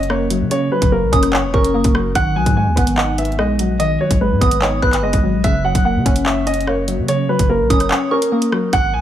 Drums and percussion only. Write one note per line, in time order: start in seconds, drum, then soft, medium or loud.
0.03 closed hi-hat soft
0.10 cross-stick loud
0.30 closed hi-hat medium
0.51 closed hi-hat medium
0.82 kick loud
0.82 closed hi-hat medium
1.13 kick loud
1.13 closed hi-hat medium
1.23 cross-stick medium
1.23 closed hi-hat medium
1.33 clap loud
1.54 kick loud
1.65 closed hi-hat medium
1.84 kick loud
1.84 closed hi-hat medium
1.95 cross-stick loud
2.15 kick loud
2.15 closed hi-hat medium
2.46 kick loud
2.46 closed hi-hat medium
2.77 kick loud
2.77 closed hi-hat medium
2.87 closed hi-hat medium
2.98 clap loud
3.18 closed hi-hat medium
3.25 closed hi-hat medium
3.32 closed hi-hat soft
3.39 cross-stick loud
3.59 closed hi-hat medium
3.80 closed hi-hat medium
4.11 kick loud
4.11 closed hi-hat loud
4.41 kick loud
4.41 closed hi-hat medium
4.51 closed hi-hat medium
4.62 clap loud
4.82 kick loud
4.93 clap medium
4.93 closed hi-hat medium
5.13 kick loud
5.13 closed hi-hat medium
5.44 kick loud
5.44 closed hi-hat medium
5.75 kick loud
5.75 closed hi-hat medium
6.06 kick loud
6.06 closed hi-hat medium
6.16 closed hi-hat medium
6.26 clap loud
6.47 closed hi-hat medium
6.54 closed hi-hat medium
6.61 closed hi-hat soft
6.67 cross-stick loud
6.88 closed hi-hat medium
7.08 closed hi-hat medium
7.39 kick loud
7.39 closed hi-hat loud
7.70 kick loud
7.70 closed hi-hat medium
7.80 cross-stick medium
7.80 closed hi-hat medium
7.91 clap loud
8.22 closed hi-hat medium
8.42 closed hi-hat medium
8.52 cross-stick loud
8.73 kick loud
8.73 closed hi-hat medium